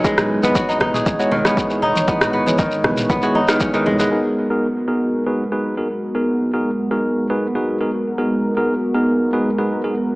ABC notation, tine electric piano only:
X:1
M:4/4
L:1/16
Q:1/4=118
K:G#m
V:1 name="Tine electric piano"
[G,B,EGB]3 [G,B,EGB] z2 [G,B,EGB]3 [G,B,EGc] z [G,B,EGc]2 [G,B,EGB] z2 | [G,B,EGB]3 [G,B,EGB] z2 [G,B,EGB]3 [G,B,EGc] z [G,B,EGB]2 [G,B,EGB]2 [G,B,EGB] | [B,DFGA]3 [B,DFGA] z2 [B,DFGA]3 [B,DFGB] z [B,DFGB]2 [B,DFGA] z2 | [B,DFGA]3 [B,DFGA] z2 [B,DFGA]3 [B,DFGB] z [B,DFGB]2 [B,DFGA] z2 |
[B,DFGA]3 [B,DFGA] z2 [B,DFGA]3 [B,DFGB] z [B,DFGB]2 [B,DFGA] z2 |]